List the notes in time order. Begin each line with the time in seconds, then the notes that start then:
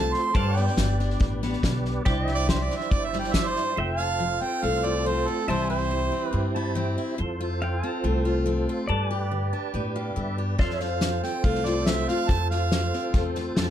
Already playing: C2 F3 A3 C4 F4 A4 C5 F5 A5
0.14 C6, snare
0.35 G2 D4 G4 B4 C5 D5 F5 A5, kick, snare
0.56 B3 G5, snare
0.61 D5 G5
0.67 snare
0.77 G1 D3, kick, snare, hi-hat pedal
0.99 D4, snare
1.10 snare
1.20 A1 G2, kick, snare
1.42 B3, snare
1.53 snare
1.63 B1 D3, kick, snare, hi-hat pedal
1.85 snare
2.05 C2 C3 D4 E4 C5 D5 G5, kick, snare
2.28 G3 E5, snare
2.35 D5, snare
2.49 E3 C5, kick, snare, hi-hat pedal
2.63 D5
2.70 D4, snare
2.77 E5, snare
2.91 G1 G2 D5, kick, snare
3.05 E5
3.12 G3, snare
3.19 G5
3.24 snare
3.34 E3 E5, kick, snare, hi-hat pedal
3.47 C5
3.56 snare
3.76 F1 F2 F4 A4 C5 E5 G5
3.97 F4 F5
4.05 A5
4.20 F3
4.41 C4 G5
4.62 C2 C3 A3 F5
4.84 F4 D5
5.06 F3 C4 C5
5.28 F4 A4
5.47 C2 C3 E3 G3 C4 E4 G4 C5 E5 A5
5.70 E4 C5
5.74 G5
5.91 E3
6.12 C4
6.25 B4
6.33 G2 G3
6.54 E4 A5
6.75 E3 C4 G5
6.97 E4 E5
7.18 F2 F4 A4 C5
7.41 F4
7.62 F3 F5 G5
7.83 C4
7.89 A5
8.04 C2 C3 A3
8.25 F4
8.46 F3 C4
8.69 F4
8.87 G2 G4 B4 D5 A5
9.11 G4 G5
9.31 D3
9.53 D4 A5
9.74 G2 A2 B3 G5
9.96 G4 F5
10.16 G2 D3 D4 E5
10.38 G4 D5
10.59 F2 F4 A4 C5 D5 F5, kick, snare
10.70 E5, snare
10.80 F4 F5, snare
10.84 C5
11.01 F3, snare, hi-hat pedal
11.23 C4 G5, snare
11.44 C2 C3 A3 F5, kick, snare
11.55 snare
11.65 F4 D5, snare
11.86 F3 C4 E5, snare, hi-hat pedal
12.08 F4 F5, snare
12.28 F2 A5, kick, snare
12.50 F4 F5, snare
12.72 F3, snare, hi-hat pedal
12.93 C4, snare
13.14 E2 C3 A3, kick, snare
13.35 F4, snare
13.56 F2 F3 C4 A5, snare, hi-hat pedal